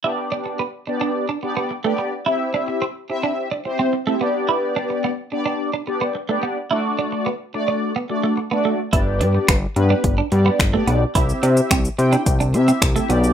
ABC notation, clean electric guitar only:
X:1
M:4/4
L:1/16
Q:1/4=108
K:G
V:1 name="Clean electric guitar"
E z D z B, z2 D z D z B, z A, B, z | E z D z C z2 D z D z C z A, B, z | E z D z B, z2 D z D z B, z A, B, z | E z D z B, z2 D z B, z A, z B, A, z |
E z D z B, z2 D z D z B, z A, B, z | E z D z C z2 D z D z C z A, B, z |]